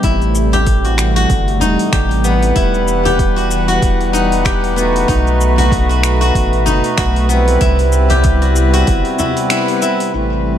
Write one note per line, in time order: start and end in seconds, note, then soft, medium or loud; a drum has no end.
0.00 1.26 A1 medium
0.00 2.52 C3 medium
0.00 2.52 E3 medium
0.00 5.05 G3 medium
0.00 2.53 A3 medium
0.00 0.29 B3 medium
0.00 1.67 E4 loud
0.00 0.53 G4 medium
0.00 kick loud
0.00 open hi-hat medium
0.00 shaker soft
0.22 shaker soft
0.35 shaker medium
0.53 0.91 G4 loud
0.53 open hi-hat soft
0.53 frame drum medium
0.53 shaker soft
0.67 kick medium
0.67 open hi-hat soft
0.67 shaker soft
0.85 1.16 F#4 medium
0.85 open hi-hat soft
0.85 shaker soft
0.98 finger snap medium
0.98 shaker medium
1.16 1.99 F#4 loud
1.16 open hi-hat soft
1.16 shaker soft
1.30 1.63 G1 medium
1.30 kick loud
1.30 open hi-hat medium
1.30 shaker soft
1.48 open hi-hat soft
1.60 1.77 E1 medium
1.60 2.62 D#4 loud
1.60 frame drum medium
1.60 shaker medium
1.79 open hi-hat soft
1.79 shaker soft
1.93 2.53 A1 medium
1.93 3.05 G4 medium
1.93 finger snap medium
1.93 kick loud
1.93 open hi-hat soft
1.93 shaker soft
2.11 open hi-hat soft
2.22 4.74 E3 medium
2.22 4.73 G3 loud
2.22 4.74 B3 medium
2.22 4.76 B3 medium
2.22 4.75 F#5 medium
2.22 shaker medium
2.27 4.75 B4 loud
2.43 open hi-hat soft
2.43 shaker soft
2.55 3.79 E1 loud
2.55 5.06 E3 medium
2.55 4.19 E4 loud
2.55 10.10 B4 medium
2.55 7.57 F#5 medium
2.55 kick medium
2.55 open hi-hat soft
2.55 shaker soft
2.74 shaker soft
2.88 shaker medium
3.05 3.42 G4 loud
3.05 open hi-hat soft
3.05 frame drum medium
3.05 shaker soft
3.19 kick medium
3.19 open hi-hat soft
3.19 shaker soft
3.36 3.68 F#4 medium
3.36 open hi-hat soft
3.36 shaker soft
3.51 shaker medium
3.68 4.51 F#4 loud
3.68 open hi-hat soft
3.68 shaker soft
3.82 5.05 E1 loud
3.82 kick loud
3.82 open hi-hat medium
3.82 shaker soft
4.01 open hi-hat soft
4.13 5.08 D#4 loud
4.13 shaker medium
4.32 open hi-hat soft
4.32 shaker soft
4.45 5.64 G4 medium
4.45 finger snap medium
4.45 kick loud
4.45 open hi-hat soft
4.45 shaker soft
4.64 open hi-hat soft
4.75 7.26 A3 loud
4.75 7.28 B3 medium
4.75 7.26 B3 medium
4.75 7.27 D#4 medium
4.75 7.27 F#4 medium
4.75 shaker medium
4.79 7.28 B4 loud
4.96 open hi-hat soft
4.96 shaker soft
5.08 6.32 B1 medium
5.08 7.59 B2 medium
5.08 7.59 A3 medium
5.08 6.65 D#4 loud
5.08 kick medium
5.08 open hi-hat medium
5.08 shaker soft
5.27 shaker soft
5.41 shaker medium
5.58 5.89 F#4 loud
5.58 open hi-hat soft
5.58 frame drum medium
5.58 shaker soft
5.72 kick loud
5.72 open hi-hat medium
5.72 shaker soft
5.89 6.20 F#4 medium
5.89 open hi-hat soft
5.89 shaker soft
6.03 finger snap medium
6.03 shaker medium
6.21 6.97 F#4 loud
6.21 open hi-hat soft
6.21 shaker soft
6.35 6.68 A1 medium
6.35 kick loud
6.35 open hi-hat medium
6.35 shaker soft
6.53 open hi-hat soft
6.66 6.82 F#1 medium
6.66 7.67 D#4 loud
6.66 frame drum medium
6.66 shaker medium
6.84 open hi-hat soft
6.84 shaker soft
6.97 7.58 B1 medium
6.97 8.16 F#4 medium
6.97 finger snap medium
6.97 kick loud
6.97 open hi-hat medium
6.97 shaker soft
7.16 open hi-hat soft
7.27 9.79 G3 medium
7.27 9.67 B3 loud
7.27 10.39 B3 medium
7.27 9.67 C4 medium
7.27 9.68 E4 medium
7.27 shaker medium
7.31 9.69 B4 loud
7.48 open hi-hat soft
7.48 shaker soft
7.61 8.84 C2 medium
7.61 10.11 C3 medium
7.61 10.11 G3 medium
7.61 9.18 E4 loud
7.61 10.11 E4 medium
7.61 kick loud
7.61 open hi-hat medium
7.61 shaker soft
7.79 open hi-hat soft
7.79 shaker soft
7.92 shaker medium
8.10 8.48 G4 loud
8.10 open hi-hat soft
8.10 frame drum medium
8.10 shaker soft
8.24 kick loud
8.24 open hi-hat medium
8.24 shaker soft
8.42 8.73 F#4 medium
8.42 open hi-hat soft
8.42 shaker soft
8.56 shaker medium
8.73 10.58 F#4 loud
8.73 open hi-hat soft
8.73 shaker soft
8.87 9.03 G1 medium
8.87 kick loud
8.87 open hi-hat medium
8.87 shaker soft
9.05 open hi-hat soft
9.19 9.50 E4 medium
9.19 frame drum medium
9.19 shaker medium
9.37 open hi-hat soft
9.37 shaker soft
9.50 9.82 E4 medium
9.50 finger snap medium
9.50 open hi-hat medium
9.50 shaker soft
9.68 10.12 B3 loud
9.68 10.12 C4 medium
9.68 10.13 E4 medium
9.68 10.13 B4 loud
9.68 open hi-hat soft
9.82 10.13 E4 medium
9.82 shaker medium
10.00 open hi-hat soft
10.00 shaker soft
10.12 10.58 A1 medium
10.12 10.58 C3 medium
10.12 10.58 E3 medium
10.12 10.58 G3 medium
10.12 10.58 A3 medium
10.12 10.58 C4 medium
10.12 10.58 E4 medium
10.12 shaker soft
10.16 10.58 B4 medium
10.32 shaker soft